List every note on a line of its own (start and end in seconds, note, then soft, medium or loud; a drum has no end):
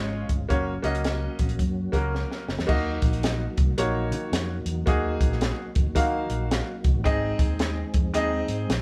0.00 0.22 G#1 loud
0.00 0.49 F3 medium
0.00 0.27 G#3 medium
0.00 0.49 G#3 medium
0.00 0.27 C#4 medium
0.00 2.65 C#4 medium
0.00 0.28 F4 medium
0.00 0.49 F4 medium
0.00 0.28 C#5 medium
0.29 0.46 G1 medium
0.29 kick medium
0.29 closed hi-hat medium
0.49 0.77 F#1 medium
0.49 2.67 F#3 medium
0.49 0.72 A#3 medium
0.49 2.67 A#3 medium
0.49 0.72 C#4 medium
0.49 0.72 F#4 medium
0.49 2.67 F#4 medium
0.49 0.72 C#5 medium
0.49 kick loud
0.49 closed hi-hat medium
0.83 1.27 C#2 medium
0.83 1.50 A#3 medium
0.83 1.51 C#4 medium
0.83 1.51 F#4 medium
0.83 1.51 D#5 medium
0.83 closed hi-hat medium
0.95 closed hi-hat medium
1.04 snare loud
1.04 closed hi-hat medium
1.39 1.56 A#1 medium
1.39 kick medium
1.39 closed hi-hat medium
1.49 closed hi-hat soft
1.59 1.86 F#2 medium
1.59 kick medium
1.59 closed hi-hat medium
1.92 2.23 C#2 medium
1.92 2.46 A#3 medium
1.92 2.46 C#4 medium
1.92 2.46 F#4 medium
1.92 2.46 A#4 medium
1.92 kick medium
1.92 closed hi-hat medium
2.15 snare soft
2.31 snare medium
2.48 2.57 F#1 medium
2.48 snare medium
2.58 2.67 E2 medium
2.58 snare medium
2.67 2.96 D#2 loud
2.67 7.01 F#3 medium
2.67 3.42 A#3 medium
2.67 7.01 A#3 medium
2.67 3.43 D#4 medium
2.67 8.82 D#4 medium
2.67 3.43 F#4 medium
2.67 7.01 F#4 medium
2.67 3.43 D#5 medium
2.67 kick loud
2.67 crash medium
3.02 3.46 A#1 medium
3.02 kick loud
3.02 closed hi-hat medium
3.13 closed hi-hat soft
3.23 snare loud
3.23 closed hi-hat medium
3.58 3.74 C2 medium
3.58 kick loud
3.58 closed hi-hat medium
3.78 4.13 A#1 medium
3.78 4.52 A#3 medium
3.78 4.53 D#4 medium
3.78 4.53 F#4 medium
3.78 4.53 C#5 medium
3.78 closed hi-hat loud
4.11 4.28 D#3 loud
4.11 closed hi-hat medium
4.32 4.59 F2 medium
4.32 snare loud
4.32 closed hi-hat loud
4.66 4.82 E2 medium
4.66 closed hi-hat medium
4.86 5.14 D#2 loud
4.86 5.61 A#3 medium
4.86 5.61 D#4 medium
4.86 5.62 F#4 medium
4.86 5.62 G#4 medium
4.86 kick loud
4.86 closed hi-hat medium
5.20 5.50 A#1 medium
5.20 kick loud
5.20 closed hi-hat medium
5.32 snare soft
5.41 snare loud
5.41 closed hi-hat medium
5.75 5.84 F#1 medium
5.75 kick loud
5.75 closed hi-hat medium
5.86 5.94 D#2 medium
5.95 6.23 D#3 medium
5.95 6.70 A#3 medium
5.95 6.70 D#4 medium
5.95 6.71 F#4 medium
5.95 6.71 F5 medium
5.95 kick medium
5.95 closed hi-hat loud
6.30 6.60 A#1 loud
6.30 closed hi-hat medium
6.51 snare loud
6.51 closed hi-hat medium
6.84 6.93 C2 medium
6.84 kick medium
6.84 closed hi-hat medium
6.94 7.03 A1 loud
7.04 7.32 G#1 loud
7.04 8.82 G#3 medium
7.04 7.79 C4 medium
7.04 8.82 C4 medium
7.04 7.79 D#4 medium
7.04 7.80 G#4 medium
7.04 8.82 G#4 medium
7.04 7.80 D#5 medium
7.04 kick loud
7.04 closed hi-hat medium
7.39 7.82 D#2 medium
7.39 kick loud
7.39 closed hi-hat medium
7.59 snare loud
7.59 closed hi-hat medium
7.94 8.15 F2 medium
7.94 kick loud
7.94 closed hi-hat medium
8.14 8.41 D#2 medium
8.14 8.82 C4 medium
8.14 8.82 D#4 medium
8.14 8.82 G#4 medium
8.14 8.82 D#5 loud
8.14 closed hi-hat loud
8.48 8.65 G#2 loud
8.48 closed hi-hat medium
8.69 8.82 A#1 loud
8.69 snare loud
8.69 closed hi-hat medium